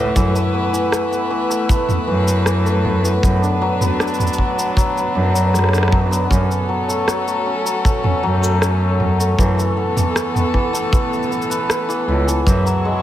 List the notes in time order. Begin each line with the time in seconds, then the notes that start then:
Already playing: E3 A3 B3 C#4 E4 B4
0.16 F#2 E3, kick, shaker
0.35 A3, shaker
0.54 B3
0.73 E3, shaker
0.92 A3, cross-stick, shaker
1.11 B3, shaker
1.30 E3
1.50 A3, shaker
1.69 B3, kick, shaker
1.89 mid tom, shaker
2.08 F#2 E3
2.27 A3, shaker
2.46 E3, cross-stick, shaker
2.66 A3, shaker
2.85 B3, mid tom
3.04 E3, shaker
3.23 F#2 F#3 B3 D4, kick, shaker
3.42 D4, shaker
3.62 F#3
3.81 B3, mid tom, shaker
4.00 D4, cross-stick, shaker
4.07 shaker
4.14 shaker
4.20 mid tom, shaker
4.27 shaker
4.33 shaker
4.38 F#3, kick
4.58 B3, shaker
4.77 F#3, kick, shaker
4.96 B3, shaker
5.15 F#2 D4
5.34 F#3, shaker
5.53 F#2 B3, cross-stick, shaker
5.59 cross-stick
5.64 cross-stick
5.69 D4, cross-stick
5.73 cross-stick, shaker
5.78 cross-stick
5.83 cross-stick
5.88 F#3, cross-stick
5.92 kick
6.11 B3, shaker
6.30 F#2 F#3 C#4 A4, kick, shaker
6.51 shaker
6.69 F#3
6.88 A3, shaker
7.08 F#3, cross-stick, shaker
7.27 A3, shaker
7.46 C#4
7.65 F#3, shaker
7.85 A3, kick, shaker
8.03 C#4, mid tom
8.23 F#2 F#3
8.42 A3, shaker
8.62 C#4, cross-stick, shaker
9.00 F#3, mid tom
9.20 A3, shaker
9.38 F#2 E3 B3 A4, kick, shaker
9.58 A3, shaker
9.77 B3
9.96 E3, mid tom, shaker
10.15 A3, cross-stick, shaker
10.35 B3, mid tom, shaker
10.54 E3, kick
10.73 A3, shaker
10.92 B3, kick, shaker
11.13 shaker
11.23 shaker
11.31 B3, shaker
11.42 shaker
11.50 B4, shaker
11.69 B3, cross-stick, shaker
11.89 E3, shaker
12.08 C#2 E4
12.27 E3, shaker
12.46 F#2 E3 F#3 E4 G#4 C#6, kick, shaker
12.66 F#3, shaker
12.85 G#3